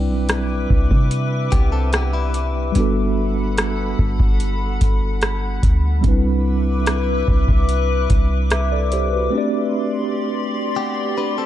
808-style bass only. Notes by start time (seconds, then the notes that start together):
0.08 B1
0.70 C2
0.91 C3
1.53 C2
2.76 G1
3.99 G1
4.20 G1
4.82 G1
5.63 D2
6.04 C2
7.28 C2
7.49 C2
8.10 C2